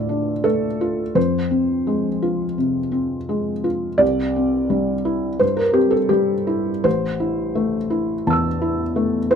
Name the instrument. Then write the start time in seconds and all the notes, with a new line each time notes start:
felt piano
Already playing: D2 A2 A3 D4 F4 D5 E5
0.09 D4
0.44 A3 A4
0.81 F4
1.15 F2 C5
1.51 C4
1.87 G#3
2.22 F4
2.58 C3
2.92 C4
3.29 G#3
3.64 F4
3.98 C2 D5
4.36 C4
4.70 G3
5.05 E4
5.39 G2 C5
5.57 A#4
5.73 C4 G4
5.91 A4
6.09 G3 G4
6.47 E4
6.84 A1 C5
7.20 E4
7.55 A3
7.90 E4
8.27 E2 A5 E6
8.33 E6
8.62 E4
8.96 A3
9.31 E4 C5